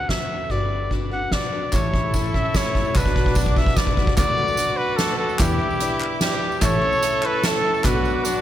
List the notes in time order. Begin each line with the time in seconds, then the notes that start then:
Already playing: D3 F#5
0.09 F#3 A3 F#4 B4 E5, kick, snare, ride
0.50 G1 G3 D4 F#4 B4 D5, kick, ride
0.91 G3 D4 F#4 B4, kick, ride
1.11 D4 F#4 B4 F#5
1.31 G3 D4 F#4 B4 D5, kick, snare, ride
1.52 D4 F#4 B4
1.72 A1 A2 E3 A3 C#4 E4 A4 C#5 E5 C#6, kick, clap, ride, tambourine
1.84 clap
1.94 kick
2.13 A3 C#4 E4 A4 C#5, kick, ride, tambourine
2.25 clap
2.34 A3 C#4 E4 A4 E5, kick
2.54 A3 C#4 E4 A4 C#5, kick, snare, tambourine
2.65 tambourine
2.75 A3 C#4 E4 A4, kick, tambourine
2.85 tambourine
2.95 B1 B2 F#3 B3 D4 F#4 B4 F#5 D6, kick, clap, tambourine
3.06 kick
3.16 kick
3.26 kick, clap
3.35 F#3 B3 D4 F#4 B4 D5, kick, clap, tambourine
3.46 kick, tambourine
3.51 D5
3.55 D4 F#4 B4 E5, kick, tambourine
3.66 kick
3.76 F#3 B3 D4 F#4 B4 D5, kick, snare, clap, tambourine
3.87 kick
3.97 D4 F#4 B4, kick
4.07 kick
4.17 D2 D3 F#3 A3 D4 F#4 B4 D5 F#5 D6, kick, clap, closed hi-hat, tambourine
4.39 clap
4.48 tambourine
4.57 F#3 A3 D4 F#4 B4, closed hi-hat, tambourine
4.77 B4
4.97 F#3 A3 D4 F#4 A4 B4 D5, snare, closed hi-hat, tambourine
5.18 A3 F#4 A4 B4
5.29 tambourine
5.39 E2 E3 G3 D4 E4 G4 B4 D5 E5 D6, kick, clap, closed hi-hat, tambourine
5.60 clap
5.71 tambourine
5.80 G3 D4 E4 B4 D5, closed hi-hat, tambourine
6.00 clap
6.21 G3 D4 E4 G4 B4 D5, snare, closed hi-hat, tambourine
6.52 tambourine
6.61 A1 A2 E3 A3 C#4 E4 A4 C#5 E5 C#6, kick, clap, closed hi-hat, tambourine
6.82 clap
6.93 tambourine
7.01 A3 C#4 E4 A4 C#5 E5, closed hi-hat, tambourine
7.23 A3 C#4 E4 A4 B4, clap
7.42 A3 C#4 E4 A4 C#5 E5, snare, closed hi-hat, tambourine
7.64 A3 C#4 E4 A4
7.74 tambourine
7.84 B1 B2 F#3 B3 D4 F#4 B4 D5 F#5 D6, kick, clap, closed hi-hat, tambourine
8.05 tambourine
8.24 F#3 B3 D4 F#4 B4, closed hi-hat, tambourine
8.35 clap